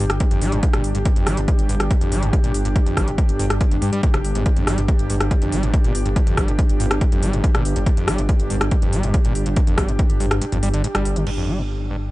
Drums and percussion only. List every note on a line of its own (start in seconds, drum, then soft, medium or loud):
0.10 cross-stick medium
0.10 closed hi-hat medium
0.20 kick loud
0.20 closed hi-hat medium
0.31 closed hi-hat medium
0.42 open hi-hat loud
0.52 closed hi-hat medium
0.63 kick loud
0.63 closed hi-hat medium
0.74 cross-stick medium
0.74 closed hi-hat medium
0.84 open hi-hat loud
0.95 closed hi-hat medium
1.05 kick loud
1.05 closed hi-hat medium
1.16 closed hi-hat medium
1.27 cross-stick medium
1.27 open hi-hat loud
1.37 closed hi-hat medium
1.48 kick loud
1.48 closed hi-hat medium
1.59 closed hi-hat medium
1.69 open hi-hat loud
1.80 cross-stick medium
1.80 closed hi-hat medium
1.91 kick loud
1.91 closed hi-hat medium
2.01 closed hi-hat medium
2.12 open hi-hat loud
2.23 closed hi-hat medium
2.33 kick loud
2.33 closed hi-hat medium
2.44 closed hi-hat medium
2.54 open hi-hat loud
2.65 closed hi-hat medium
2.76 kick loud
2.76 closed hi-hat medium
2.86 closed hi-hat medium
2.97 kick medium
2.97 cross-stick medium
2.97 open hi-hat loud
3.08 closed hi-hat medium
3.18 kick loud
3.18 closed hi-hat medium
3.29 closed hi-hat medium
3.39 open hi-hat loud
3.50 cross-stick medium
3.50 closed hi-hat medium
3.61 kick loud
3.61 closed hi-hat medium
3.71 closed hi-hat soft
3.82 open hi-hat loud
3.93 closed hi-hat medium
4.03 kick loud
4.03 closed hi-hat medium
4.14 cross-stick medium
4.14 closed hi-hat medium
4.25 open hi-hat loud
4.35 closed hi-hat medium
4.46 kick loud
4.46 closed hi-hat medium
4.57 closed hi-hat soft
4.67 cross-stick medium
4.67 open hi-hat loud
4.78 closed hi-hat medium
4.88 kick loud
4.88 closed hi-hat medium
4.99 closed hi-hat medium
5.10 open hi-hat loud
5.21 cross-stick medium
5.21 closed hi-hat medium
5.31 kick loud
5.31 closed hi-hat medium
5.42 closed hi-hat soft
5.52 open hi-hat loud
5.63 closed hi-hat medium
5.74 kick loud
5.74 closed hi-hat medium
5.84 closed hi-hat soft
5.95 open hi-hat loud
6.06 closed hi-hat medium
6.16 kick loud
6.16 closed hi-hat medium
6.27 closed hi-hat medium
6.37 kick medium
6.37 cross-stick medium
6.37 open hi-hat loud
6.48 closed hi-hat medium
6.59 kick loud
6.59 closed hi-hat medium
6.69 closed hi-hat soft
6.80 open hi-hat loud
6.91 cross-stick loud
6.91 closed hi-hat medium
7.01 kick loud
7.01 closed hi-hat medium
7.12 closed hi-hat soft
7.23 open hi-hat loud
7.33 closed hi-hat soft
7.44 kick loud
7.44 closed hi-hat medium
7.55 cross-stick medium
7.55 closed hi-hat soft
7.65 open hi-hat loud
7.76 closed hi-hat medium
7.86 kick loud
7.86 closed hi-hat medium
7.97 closed hi-hat medium
8.08 cross-stick loud
8.08 open hi-hat loud
8.18 closed hi-hat medium
8.29 kick loud
8.29 closed hi-hat medium
8.40 closed hi-hat soft
8.50 open hi-hat loud
8.61 cross-stick loud
8.61 closed hi-hat medium
8.71 kick loud
8.71 closed hi-hat medium
8.82 closed hi-hat soft
8.93 open hi-hat loud
9.03 closed hi-hat medium
9.14 kick loud
9.14 closed hi-hat medium
9.25 closed hi-hat medium
9.35 open hi-hat loud
9.46 closed hi-hat medium
9.56 kick loud
9.56 closed hi-hat medium
9.67 closed hi-hat medium
9.78 kick medium
9.78 cross-stick loud
9.78 open hi-hat loud
9.88 closed hi-hat medium
9.99 kick loud
9.99 closed hi-hat medium
10.10 closed hi-hat medium
10.20 open hi-hat loud
10.31 cross-stick loud
10.31 closed hi-hat medium
10.42 closed hi-hat medium
10.52 closed hi-hat medium
10.63 open hi-hat loud
10.74 closed hi-hat medium
10.84 closed hi-hat medium
10.95 cross-stick loud
10.95 closed hi-hat medium
11.05 open hi-hat loud
11.16 closed hi-hat medium
11.27 crash medium